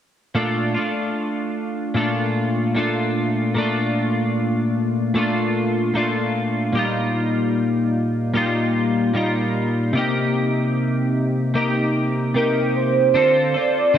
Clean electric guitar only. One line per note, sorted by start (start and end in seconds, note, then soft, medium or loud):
0.35 0.75 A#2 medium
0.35 0.75 A3 medium
0.35 0.76 D4 medium
0.35 0.73 F4 medium
0.75 1.95 A3 soft
0.75 1.96 D4 soft
0.75 1.98 F4 soft
1.95 2.73 A#2 medium
1.95 2.75 A3 soft
1.95 2.76 D4 medium
1.95 2.78 F4 medium
2.75 3.53 A#2 medium
2.75 3.55 A3 medium
2.75 3.56 D4 medium
2.75 3.60 F4 medium
3.55 5.13 A#2 medium
3.55 5.14 A3 medium
3.55 5.15 D4 medium
3.60 5.18 F4 medium
5.14 5.93 A#2 medium
5.14 5.94 A3 medium
5.14 5.95 D4 medium
5.14 5.97 F4 medium
5.94 6.71 A#2 medium
5.94 6.75 A3 medium
5.94 6.76 D4 medium
5.94 6.78 F4 medium
6.73 8.32 A#2 medium
6.73 8.35 G3 medium
6.77 8.36 D#4 medium
6.77 8.36 F4 medium
8.34 9.12 A#2 medium
8.34 9.14 G3 medium
8.34 9.16 D#4 medium
8.34 9.16 F4 medium
9.14 9.93 A#2 medium
9.14 9.95 G3 medium
9.14 9.97 D#4 medium
9.14 9.96 F4 medium
9.93 11.53 C3 medium
9.93 11.54 A#3 medium
9.97 11.55 D#4 medium
9.97 11.56 G4 medium
11.54 12.33 C3 medium
11.54 12.35 A#3 medium
11.54 12.36 D#4 medium
11.54 12.36 G4 medium
12.34 13.15 C3 medium
12.34 13.16 A#3 medium
12.34 13.15 D#4 medium
12.34 13.16 G4 medium
13.14 13.55 D3 medium
13.14 13.55 C4 medium
13.14 13.55 F4 medium
13.14 13.53 A4 medium
13.54 13.94 C4 soft
13.54 13.95 F4 soft
13.54 13.95 A4 soft
13.94 13.98 D3 medium